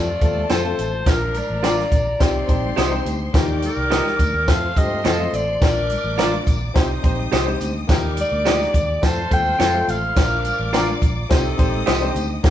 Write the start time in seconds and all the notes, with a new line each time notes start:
Already playing: F2 C3 A3 F4 A4 D5 A5
0.21 D#2 A3 C4 F4 A4, kick, closed hi-hat, tambourine, high conga
0.37 high conga
0.49 F2 C4 F4 A4 C5, snare, closed hi-hat, tambourine
0.63 A3 C4 F4 A4, muted conga, high conga
0.78 A1, closed hi-hat, tambourine, low conga
1.05 A#1 F3 A#3 D4 F4 A#4 A#5, kick, snare, closed hi-hat, tambourine, low conga
1.34 D5, closed hi-hat, tambourine, high conga
1.50 A1, high conga
1.63 A#3 D4 F4 A#4 D5, snare, closed hi-hat, tambourine, muted conga
1.77 snare, high conga
1.91 A#1, kick, closed hi-hat, tambourine, low conga
2.19 C2 C3 D#3 C4 D#4 G4 C5 C6, kick, snare, closed hi-hat, tambourine, muted conga
2.34 muted conga
2.47 A#1 C4 D#4 G4 C5, kick, closed hi-hat, tambourine, high conga
2.64 high conga
2.76 C2 G4 C5 D#5, snare, closed hi-hat, tambourine, muted conga
2.90 C4 D#4 G4 C5, high conga
3.05 D2, closed hi-hat, tambourine, low conga
3.33 D#2 D#3 A#3 D#4 G4 A#4 D5 D6, kick, snare, closed hi-hat, tambourine
3.48 muted conga
3.62 A#4, closed hi-hat, tambourine, high conga
3.77 C2, high conga
3.90 A#3 D#4 G4 A#4 D#5, snare, closed hi-hat, tambourine, muted conga
4.05 snare, muted conga, high conga
4.19 D2, kick, closed hi-hat, tambourine, low conga
4.34 D#2
4.47 F2 A3 C4 F4 A4 C5 F5 C6, kick, snare, closed hi-hat, tambourine
4.75 G2 A3 C4 F4 G4 D#5, kick, closed hi-hat, tambourine, high conga
4.92 high conga
5.04 F2 C4 F4 A4, snare, closed hi-hat, tambourine
5.18 A3 C4 F4 A4, high conga
5.33 A1 D5, closed hi-hat, tambourine, low conga
5.61 A#1 F3 A#3 D4 F4 A#4 D5 D6, kick, snare, closed hi-hat, tambourine, muted conga, low conga
5.75 muted conga
5.90 closed hi-hat, tambourine, high conga
6.04 A1, high conga
6.17 A#3 D4 F4 A#4 D5, snare, closed hi-hat, tambourine, muted conga
6.32 muted conga, high conga
6.46 A#1, kick, closed hi-hat, tambourine, low conga
6.74 C2 C3 G3 C4 D#4 G4 C5 D#5 D#6, kick, snare, closed hi-hat, tambourine
6.90 muted conga
7.02 A#1 C4 D#4 G4 C5, kick, closed hi-hat, tambourine, high conga
7.19 high conga
7.32 C2 G4 C5 D#5, snare, closed hi-hat, tambourine, muted conga
7.45 C4 D#4 G4 C5, muted conga, high conga
7.60 D2, closed hi-hat, tambourine, low conga
7.87 D#2 G3 A#3 D#4 G4 A#4 D5 D6, kick, snare, closed hi-hat, tambourine, low conga
8.17 D5, closed hi-hat, tambourine, high conga
8.32 D2, high conga
8.44 A#3 D#4 G4 A#4 D#5, snare, closed hi-hat, tambourine
8.60 snare, muted conga, high conga
8.74 D#2, kick, closed hi-hat, tambourine, low conga
9.02 F2 A3 C4 F4 A4 C5 A5 C6, kick, snare, closed hi-hat, tambourine
9.30 D#2 A3 C4 F4 A4 G5, kick, closed hi-hat, tambourine, high conga
9.47 high conga
9.59 F2 C4 F4 A4, snare, closed hi-hat, tambourine
9.73 A3 C4 F4 A4, high conga
9.88 A1 F5, closed hi-hat, tambourine, low conga
10.15 A#1 F3 A#3 D4 F4 A#4 D5 D6, kick, snare, closed hi-hat, tambourine, muted conga, low conga
10.30 muted conga
10.45 closed hi-hat, tambourine, high conga
10.59 A1, high conga
10.72 A#3 D4 F4 A#4 D5, snare, closed hi-hat, tambourine, muted conga
10.88 muted conga, high conga
11.01 A#1, kick, closed hi-hat, tambourine, low conga
11.29 C2 C3 D#3 C4 D#4 G4 A4 C5 D#5 D#6, kick, snare, closed hi-hat, tambourine
11.57 A#1 C4 D#4 G4 C5, kick, closed hi-hat, tambourine, high conga
11.75 high conga
11.86 C2 G4 C5 D#5, snare, closed hi-hat, tambourine
12.00 C4 D#4 G4 C5, high conga
12.15 D2, closed hi-hat, tambourine, low conga
12.43 D#2 A#3 D#4 G4 A#4 D5 D6, kick, snare, closed hi-hat, tambourine